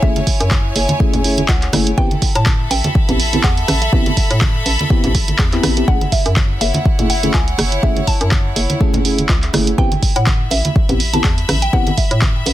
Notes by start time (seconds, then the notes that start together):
Already playing: E4 C#5 G#5
0.02 F#1 A3 C#4 E4 G#4 E5, kick
0.16 closed hi-hat, high conga
0.27 kick, open hi-hat
0.40 F#2, closed hi-hat
0.51 kick, clap, high conga
0.76 F#1, open hi-hat, high bongo
0.89 closed hi-hat, high conga
1.00 A3 C#4 E4 G#4, kick
1.13 F#1, closed hi-hat, low conga
1.24 A3 C#4 E4 G#4, open hi-hat
1.37 closed hi-hat, high conga
1.48 C#2 F#5, kick, clap
1.62 clap, closed hi-hat
1.73 F#1 A3 C#4 E4 G#4, cross-stick, open hi-hat, high bongo, high conga
1.87 closed hi-hat
1.97 A1 B3 C4 E4 G4 A4 G5, kick
2.11 B5, closed hi-hat, high conga
2.22 kick, open hi-hat
2.35 A2 E5 A5, closed hi-hat
2.46 kick, clap, high conga
2.71 A1 G5, open hi-hat, high bongo
2.84 closed hi-hat, high conga
2.95 kick
3.08 A1 B3 C4 E4 G4, closed hi-hat, low conga
3.20 open hi-hat
3.33 B3 C4 E4 G4, closed hi-hat, high bongo, high conga
3.43 E2 F#5, kick, clap
3.57 closed hi-hat
3.68 A1, cross-stick, open hi-hat, high conga
3.82 E5, closed hi-hat
3.92 A1 B3 C4 E4 G4, kick
4.06 closed hi-hat, high conga
4.17 kick, open hi-hat
4.31 A2, closed hi-hat
4.41 kick, clap, high conga
4.66 A1, open hi-hat, high bongo
4.79 closed hi-hat, high conga
4.90 B3 C4 E4 G4, kick
5.04 A1, closed hi-hat, low conga
5.15 kick, open hi-hat
5.28 closed hi-hat, high conga
5.39 E2, kick, clap
5.52 B3 C4 E4 G4, clap, closed hi-hat
5.63 A1, cross-stick, open hi-hat, high bongo, high conga
5.77 B3 C4 E4 G4, closed hi-hat
5.88 F#1 A3 C#4 E4 G#4 F#5, kick
6.01 closed hi-hat, high conga
6.12 E5 F#5, kick, open hi-hat
6.18 C#5
6.26 F#2, closed hi-hat
6.36 kick, clap, high conga
6.61 F#1 E5, open hi-hat, high bongo
6.74 closed hi-hat, high conga
6.85 kick
6.99 F#1 A3 C#4 E4 G#4, closed hi-hat, low conga
7.10 F#5, open hi-hat
7.23 A3 C#4 E4 G#4, closed hi-hat, high bongo, high conga
7.34 C#2 G#5, kick, clap
7.48 closed hi-hat
7.58 F#1, cross-stick, open hi-hat, high conga
7.72 closed hi-hat
7.83 F#1 A3 C#4 E4 G#4 E5, kick
7.97 closed hi-hat, high conga
8.07 A5, kick, open hi-hat
8.21 F#2, closed hi-hat
8.31 kick, clap, high conga
8.56 F#1, open hi-hat, high bongo
8.70 closed hi-hat, high conga
8.80 A3 C#4 E4 G#4, kick
8.94 F#1, closed hi-hat, low conga
9.05 A3 C#4 E4 G#4, open hi-hat
9.18 closed hi-hat, high conga
9.29 C#2, kick, clap
9.42 clap, closed hi-hat
9.53 F#1 A3 C#4 E4 G#4, cross-stick, open hi-hat, high bongo, high conga
9.67 closed hi-hat
9.78 A1 B3 C4 E4 G4 G5, kick
9.92 E5, closed hi-hat, high conga
10.03 kick, open hi-hat
10.14 A2 F#5 B5, closed hi-hat
10.26 kick, clap, high conga
10.51 A1 E5, open hi-hat, high bongo
10.65 closed hi-hat, high conga
10.76 kick
10.89 A1 B3 C4 E4 G4, closed hi-hat, low conga
11.00 open hi-hat
11.13 B3 C4 E4 G4 A5, closed hi-hat, high bongo, high conga
11.24 E2, kick, clap
11.38 closed hi-hat
11.49 A1, cross-stick, open hi-hat, high conga
11.62 G5, closed hi-hat
11.73 A1 B3 C4 E4 G4 F#5, kick
11.87 closed hi-hat, high conga
11.97 E5, kick, open hi-hat
12.11 A2, closed hi-hat
12.21 kick, clap, high conga
12.46 A1, open hi-hat, high bongo